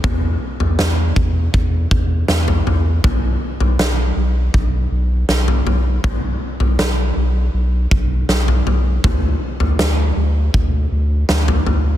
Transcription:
<<
  \new Staff \with { instrumentName = "Sub bass" } { \clef bass \time 4/4 \key b \minor \tempo 4 = 80 e,8 r16 e,16 e,8 e,8 e,8 e,8 e,8 e,8 | b,,8 r16 b,,16 b,,8 b,,8 b,,8 b,,8 b,,8 b,,8 | b,,8 r16 b,,16 b,,8 b,,8 b,,8 b,,8 b,,8 b,,8 | d,8 r16 d,16 d,8 d,8 d,8 d,8 d,8 d,8 | }
  \new DrumStaff \with { instrumentName = "Drums" } \drummode { \time 4/4 <bd tomfh>8. tomfh16 sn8 bd8 bd8 bd8 sn16 tomfh16 tomfh8 | <bd tomfh>8. tomfh16 sn4 bd4 sn16 tomfh16 tomfh8 | <bd tomfh>8. tomfh16 sn4 r8 bd8 sn16 tomfh16 tomfh8 | <bd tomfh>8. tomfh16 sn4 bd4 sn16 tomfh16 tomfh8 | }
>>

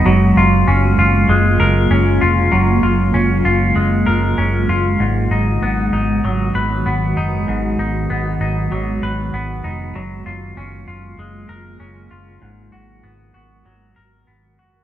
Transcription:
<<
  \new Staff \with { instrumentName = "Clean electric guitar" } { \time 4/4 \key gis \dorian \tempo 4 = 97 fis8 eis'8 cis'8 eis'8 gis8 ais'8 cis'8 eis'8 | fis8 eis'8 cis'8 eis'8 gis8 ais'8 cis'8 eis'8 | gis,8 dis'8 b8 dis'8 fis8 b'8 b8 dis'8 | gis,8 dis'8 b8 dis'8 fis8 b'8 b8 dis'8 |
fis8 eis'8 cis'8 eis'8 gis8 ais'8 cis'8 eis'8 | gis,8 fis'8 b8 fis'8 fis8 ais'8 b8 fis'8 | }
  \new Staff \with { instrumentName = "Ambient pad" } { \time 4/4 \key gis \dorian << { <cis ais eis'>1~ | <cis ais eis'>1 | <dis b fis'>1~ | <dis b fis'>1 |
<cis ais eis'>1 | <dis b fis'>1 | } \\ { <fis gis>1~ | <fis gis>1~ | <fis gis>1~ | <fis gis>1 |
<fis gis>1 | ais'1 | } >> }
  \new Staff \with { instrumentName = "Fingered electric bass" } { \clef bass \time 4/4 \key gis \dorian fis,,8 fis,,8 fis,,8 fis,,8 fis,,8 fis,,8 fis,,8 eis,,8 | fis,,8 fis,,8 fis,,8 fis,,8 fis,,8 fis,,8 fis,,8 fis,,8 | gis,,8 gis,,8 gis,,8 gis,,8 gis,,8 gis,,8 gis,,8 fis,,8 | gis,,8 gis,,8 gis,,8 gis,,8 gis,,8 gis,,8 gis,,8 eis,,8 |
fis,,8 fis,,8 fis,,8 fis,,8 fis,,8 fis,,8 fis,,8 fis,,8 | gis,,8 gis,,8 gis,,8 gis,,8 gis,,8 gis,,8 gis,,8 fis,,8 | }
>>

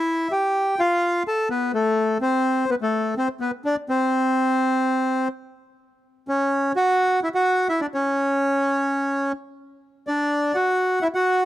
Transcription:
\new Staff \with { instrumentName = "Bandoneon" } { \time 4/4 \key a \minor \tempo 4 = 126 <e' e''>8 <g' g''>4 <f' f''>4 <a' a''>8 <b b'>8 <a a'>8~ | <a a'>8 <c' c''>4 <b b'>16 <a a'>8. <c' c''>8 <b b'>8 <d' d''>8 | <c' c''>2. r4 | \key cis \phrygian r4 <cis' cis''>4 <fis' fis''>4 <e' e''>16 <fis' fis''>8. |
<e' e''>16 <d' d''>16 <cis' cis''>2. r8 | r4 <d' d''>4 <fis' fis''>4 <e' e''>16 <fis' fis''>8. | }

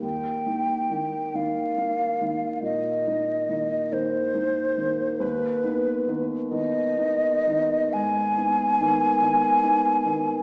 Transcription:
<<
  \new Staff \with { instrumentName = "Flute" } { \time 12/8 \key aes \lydian \tempo 4. = 47 g''4. f''4. ees''4. c''4. | ces''4 r8 ees''4. aes''2. | }
  \new Staff \with { instrumentName = "Grand piano" } { \time 12/8 \key aes \lydian ees,8 <bes ees'>8 <ees bes ees'>8 <ees bes ees'>8 <bes ees'>8 <ees bes ees'>8 bes,8 <bes ees'>8 <ees bes ees'>8 <ees bes ees'>8 <bes ees'>8 <ees bes ees'>8 | ees,8 <ces' ees'>8 <ees ces' ees'>8 <ees ces' ees'>8 <ces' ees'>8 <ees ces' ees'>8 aes,8 <ces' ees'>8 <ees ces' ees'>8 <ees ces' ees'>8 <ces' ees'>8 <ees ces' ees'>8 | }
>>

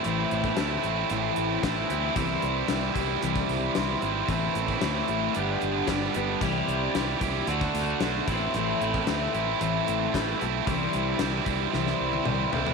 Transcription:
<<
  \new Staff \with { instrumentName = "Twelve-string acoustic guitar" } { \time 4/4 \key a \minor \tempo 4 = 113 <a, e a c' e' c''>4 <a c' e' c''>4 <a, e a c' e' c''>4 <a c' e' c''>8 <a c' e' c''>8 | <c e g c' e' c''>8 <g c' e' c''>8 <g c' e' c''>4 <c e g c' e' c''>4 <g c' e' c''>8 <g c' e' c''>8 | <a, e a c' e' c''>8 <a c' e' c''>8 <a c' e' c''>4 <g d' g' b'>4 <g d' g' b'>8 <d' g' b'>8 | <c e g c' e' c''>4 <g c' e' c''>4 <d a d' fis' a'>4 <a d' fis' a'>8 <a c' e' a'>8 |
<a, e a c' e' a'>8 <a c' e' a'>8 <a c' e' a'>4 <a, e a c' e' a'>4 <a c' e' a'>8 <a c' e' a'>8 | <c e g c' e' c''>4 <g c' e' c''>4 <c e g c' e' c''>4 <g c' e' c''>8 <g c' e' c''>8 | }
  \new Staff \with { instrumentName = "Distorted electric guitar" } { \time 4/4 \key a \minor <a, e a c' e'>4 <e a c' e'>8 <a c' e'>8 <a, e a c' e'>4 <e a c' e'>8 <a c' e'>8 | <c e g c' e'>4 <e g c' e'>8 <g c' e'>8 <c e g c' e'>4 <e g c' e'>8 <g c' e'>8 | <a, e a c' e'>4 <e a c' e'>8 <a c' e'>8 <g, d g b d' g'>4 <g b d' g'>8 <g b d' g'>8 | <c e g e' g'>4 <e g e' g'>8 <g e' g'>8 <d a d' fis'>4 <d a d' fis'>8 <a, e a c' e'>8 |
<a, e a c' e'>4 <e a c' e'>8 <a c' e'>8 <a, e a c' e'>4 <e a c' e'>8 <a c' e'>8 | <c e g c' e'>4 <e g c' e'>8 <g c' e'>8 <c e g c' e'>4 <e g c' e'>8 <g c' e'>8 | }
  \new Staff \with { instrumentName = "Overdriven electric guitar" } { \time 4/4 \key a \minor <a, e a c' e'>2. <a, e a c' e'>8 r8 | <c e g c' e'>2.~ <c e g c' e'>8 <c e g c' e'>8 | <a, e a c' e'>2 <g, d g b d' g'>2 | <c e g c' g'>2 <d a d' fis'>4. <a, e a c' e'>8~ |
<a, e a c' e'>2. <a, e a c' e'>8 r8 | <c e g c' e'>2.~ <c e g c' e'>8 <c e g c' e'>8 | }
  \new Staff \with { instrumentName = "Fingered electric bass" } { \clef bass \time 4/4 \key a \minor a,,8 a,,8 d,8 a,,8 a,,8 a,,8 a,,8 d,8 | c,8 c,8 c,8 c,8 c,8 c,8 c,8 gis,,8 | a,,8 a,,8 d,8 a,,8 g,,8 g,,8 g,,8 g,,8 | c,8 c,8 c,8 c,8 d,8 d,8 b,,8 a,,8 |
a,,8 a,,8 d,8 a,,8 a,,8 a,,8 a,,8 b,,8 | c,8 c,8 c,8 c,8 c,8 c,8 c,8 c,8 | }
  \new DrumStaff \with { instrumentName = "Drums" } \drummode { \time 4/4 hh8 hh16 bd16 <hh sn>8 hh8 hh8 hh8 <hh bd sn>8 hh8 | <hh bd>8 hh8 <hh sn>8 <hh bd>8 hh16 bd16 hh8 <hh sn>8 hh8 | <hh bd>8 hh16 bd16 <hh sn>8 hh8 hh8 hh8 <hh bd sn>8 hh8 | <hh bd>8 hh8 <hh sn>8 <hh bd>8 hh16 bd16 hh8 <hh sn>8 <hh bd>8 |
hh8 hh16 bd16 <hh sn>8 hh8 hh8 hh8 <hh bd sn>8 hh8 | <hh bd>8 hh8 <hh sn>8 <hh bd>8 sn16 sn8 tommh16 toml8 tomfh16 tomfh16 | }
>>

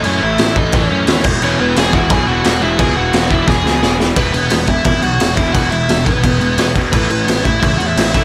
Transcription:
<<
  \new Staff \with { instrumentName = "Lead electric guitar" } { \time 4/4 \key e \major \tempo 4 = 174 <cis' cis''>8 <e' e''>4 <dis' dis''>8 <cis' cis''>4. r8 | <cis' cis''>8 <b b'>8 <gis' gis''>8 <fis' fis''>8 <gis' gis''>8 <fis' fis''>4 <e' e''>8 | <gis' gis''>8 <fis' fis''>4 <e' e''>8 <gis' gis''>4. r8 | <b b'>8 <b b'>4 <e' e''>8 <e' e''>8 <fis' fis''>4 <e' e''>8 |
<fis' fis''>8 <e' e''>4 <b b'>2 r8 | <b b'>8 <b b'>4 <e' e''>8 <e' e''>8 <fis' fis''>16 <e' e''>8. <e' e''>8 | }
  \new Staff \with { instrumentName = "Distorted electric guitar" } { \clef bass \time 4/4 \key e \major <a, e a>8 <a, e a>8 <a, e a>8 <a, e a>8 <a, e a>8 <a, e a>8 <a, e a>8 <e, b, e>8 | <e, b, e>8 <e, b, e>8 <e, b, e>8 <e, b, e>8 <e, b, e>8 <e, b, e>8 <e, b, e>8 <e, b, e>8 | <e, b, e>8 <e, b, e>8 <e, b, e>8 <e, b, e>8 <e, b, e>8 <e, b, e>8 <e, b, e>8 <e, b, e>8 | <e, b, e>8 <e, b,>8 <e, b,>8 <e, b,>8 <e, b,>8 <e, b,>8 <e, b,>8 <e, b, e>8 |
<e, b, e>8 <e, b,>8 <e, b,>8 <e, b,>8 <e, b,>8 <e, b,>8 <e, b,>8 <e, b, e>8 | <a, e a>8 <a, e>8 <a, e>8 <a, e>8 <a, e>8 <a, e>8 <a, e>8 <a, e a>8 | }
  \new Staff \with { instrumentName = "Distorted electric guitar" } { \clef bass \time 4/4 \key e \major r1 | <e, b, e>8 <e, b, e>8 <e, b, e>8 <e, b, e>8 <e, b, e>8 <e, b, e>8 <e, b, e>8 <e, b, e>8 | <e, b, e>8 <e, b, e>8 <e, b, e>8 <e, b, e>8 <e, b, e>8 <e, b, e>8 <e, b, e>8 <e, b, e>8 | <e, b, e>8 <e, b,>8 <e, b,>8 <e, b,>8 <e, b,>8 <e, b,>8 <e, b,>8 <e, b, e>8 |
<e, b, e>8 <e, b,>8 <e, b,>8 <e, b,>8 <e, b,>8 <e, b,>8 <e, b,>8 <e, b, e>8 | <a, e a>8 <a, e>8 <a, e>8 <a, e>8 <a, e>8 <a, e>8 <a, e>8 <a, e a>8 | }
  \new Staff \with { instrumentName = "Picked electric bass" } { \clef bass \time 4/4 \key e \major fis,8 a,,8 a,,8 a,,8 a,,8 fis,8 dis,8 e,,8 | e,,8 e,,8 e,,8 e,,8 b,,8 e,,8 e,,8 e,,8 | cis,8 e,,8 e,,8 e,,8 e,,8 cis,8 e,,4 | e,,8 e,,8 e,,8 e,,8 gis,,8 b,,8 e,,8 e,,8 |
e,,8 e,,8 e,,8 gis,,8 e,,8 e,,8 e,8 e,,8 | a,,8 a,,8 a,,8 a,,8 cis,8 e,8 a,,8 a,,8 | }
  \new DrumStaff \with { instrumentName = "Drums" } \drummode { \time 4/4 cymc4 <cymc sn>8 bd8 <cymc bd>4 <cymc sn>8 <cymc bd>8 | cymc4 <cymc sn>8 bd8 <cymc bd>4 <cymc sn>4 | <cymc bd>4 <cymc sn>8 bd8 <bd sn>8 sn8 sn8 sn8 | <cymc bd>8 cymc8 <cymc sn>8 <cymc bd>8 <cymc bd>8 cymc8 <cymc sn>8 <cymc bd>8 |
<cymc bd>8 cymc8 <cymc sn>8 <cymc bd>8 <cymc bd>8 cymc8 <cymc sn>8 <cymc bd>8 | <cymc bd>8 cymc8 <cymc sn>8 <cymc bd>8 <cymc bd>8 cymc8 <cymc sn>8 <cymc bd>8 | }
>>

